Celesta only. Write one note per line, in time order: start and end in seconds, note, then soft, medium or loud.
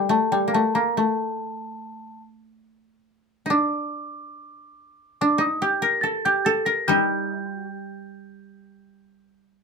0.00 0.11 G5 medium
0.10 0.31 A5 medium
0.32 0.52 G5 medium
0.54 0.73 A5 medium
0.74 0.94 A#5 medium
0.97 2.20 A5 medium
3.50 5.16 D6 medium
5.21 5.40 D6 medium
5.41 5.61 D#6 medium
5.62 5.82 G6 medium
5.83 6.03 A#6 medium
6.01 6.22 A6 medium
6.25 6.45 G6 medium
6.45 6.66 A6 medium
6.65 6.87 A#6 medium
6.88 9.52 G6 medium